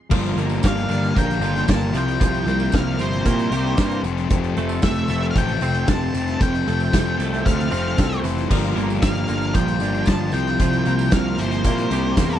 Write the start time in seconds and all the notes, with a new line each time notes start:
0.10 G1 G2 D3 F3 G3 A#3 D4 A#4 G5, kick, crash, tambourine
0.25 closed hi-hat
0.36 G1 G3 A#3 D4, closed hi-hat
0.50 tambourine
0.63 G1 D3 G3 A#3 D4, kick, snare, closed hi-hat, tambourine
0.67 F5
0.77 closed hi-hat
0.89 G1 G2 D3 G3 A#3 D4, closed hi-hat, tambourine
1.04 closed hi-hat
1.15 A#1 D3 G3 A#3 D4 G5, kick, closed hi-hat, tambourine
1.30 closed hi-hat
1.41 G1 G3 A#3 D4 F4, closed hi-hat, tambourine
1.56 snare, closed hi-hat
1.68 G1 G2 D3 G3 A#3 D4 A5, kick, snare, closed hi-hat, tambourine
1.81 tambourine
1.93 C2 C3 F3 G3 C4 E4 C5 A#5, closed hi-hat, tambourine
1.98 G5
2.08 closed hi-hat
2.20 C2 C3 F3 G3 C4 E4, kick, closed hi-hat, tambourine
2.34 closed hi-hat
2.45 C2 G3 A#3 C4 E4, closed hi-hat
2.60 tambourine
2.72 C2 C3 G3 A#3 C4 E4 F5, kick, snare, closed hi-hat, tambourine
2.98 G1 C3 G3 C4 E4 C5, closed hi-hat, tambourine
3.13 closed hi-hat
3.25 A#2 C3 G3 A#3 C4 E4, kick, closed hi-hat, tambourine
3.39 closed hi-hat
3.51 C2 G3 C4 E4 G4, closed hi-hat, tambourine
3.65 snare
3.77 G2 C3 G3 A#3 C4 E4, kick, snare, closed hi-hat, tambourine
3.91 closed hi-hat
4.03 F1 F2 C3 F3 A3 C4 C5 A5, closed hi-hat, tambourine
4.18 snare, closed hi-hat
4.30 F1 F2 C3 F3 A3 C4, kick, closed hi-hat, tambourine
4.44 closed hi-hat
4.56 F1 F3 A3 C4, closed hi-hat
4.69 tambourine
4.82 F1 C3 F3 A3 C4 E5, kick, snare, closed hi-hat, tambourine
4.96 closed hi-hat
5.08 F1 F2 C3 F3 A3 C4, closed hi-hat, tambourine
5.23 closed hi-hat
5.31 F5
5.35 A1 C3 F3 A3 C4 G5, kick, closed hi-hat, tambourine
5.48 closed hi-hat
5.61 F1 F3 A3 C4, closed hi-hat, tambourine
5.74 closed hi-hat
5.87 F1 F2 C3 F3 A3 C4 A5, kick, snare, closed hi-hat, tambourine
6.01 tambourine
6.14 F1 F3 A3 C4, closed hi-hat, tambourine
6.28 snare, closed hi-hat
6.39 F1 F2 C3 F3 A3 C4 G5, kick, closed hi-hat
6.54 closed hi-hat, tambourine
6.66 F1 F3 A3 C4, closed hi-hat
6.80 tambourine
6.93 F1 C3 F3 A3 C4, kick, snare, closed hi-hat, tambourine
7.07 tambourine
7.18 C2 F2 C3 F3 A3 C4, closed hi-hat, tambourine
7.32 closed hi-hat, tambourine
7.44 D2 C3 F3 A3 C4 F5, kick, closed hi-hat, tambourine
7.58 closed hi-hat, tambourine
7.71 F1 F3 A3 C4, closed hi-hat, tambourine
7.85 snare, tambourine
7.97 C2 F2 C3 F3 A3 C4 A4, kick, snare, closed hi-hat, tambourine
8.12 closed hi-hat
8.22 F1 E3 F3 A3 C4 C5, closed hi-hat, tambourine
8.38 snare, closed hi-hat
8.49 G1 G2 D3 F3 G3 A#3 D4 G4 A#4 F5 A#5, kick, crash, tambourine
8.63 closed hi-hat
8.75 G1 G3 A#3 D4, closed hi-hat
8.90 tambourine
9.02 G1 D3 F3 G3 A#3 D4 F5, kick, snare, closed hi-hat, tambourine
9.15 closed hi-hat
9.28 G1 G2 D3 G3 A#3 D4, closed hi-hat, tambourine
9.41 closed hi-hat
9.54 A#1 D3 F3 G3 A#3 D4 G5, kick, closed hi-hat, tambourine
9.68 closed hi-hat
9.80 G1 G3 A#3 D4, closed hi-hat, tambourine
9.94 closed hi-hat
10.06 G1 G2 D3 F3 G3 A#3 A5, kick, snare, closed hi-hat, tambourine
10.10 D4
10.32 C2 C3 F3 G3 C4 E4 C5 G5, closed hi-hat, tambourine
10.47 snare, closed hi-hat
10.59 C2 C3 F3 G3 C4 E4, kick, closed hi-hat, tambourine
10.73 closed hi-hat
10.85 C2 G3 A#3 C4 E4, closed hi-hat
10.99 tambourine
11.11 C2 C3 G3 A#3 C4 E4 F5, kick, snare, closed hi-hat, tambourine
11.38 G1 C3 G3 C4 E4 C5, closed hi-hat, tambourine
11.51 closed hi-hat
11.64 A#2 C3 G3 A#3 C4 E4, kick, closed hi-hat, tambourine
11.78 closed hi-hat
11.90 C2 G3 C4 E4 G4, closed hi-hat, tambourine
12.04 snare
12.17 E2 C3 G3 A#3 C4 E4, kick, snare, closed hi-hat, tambourine
12.31 closed hi-hat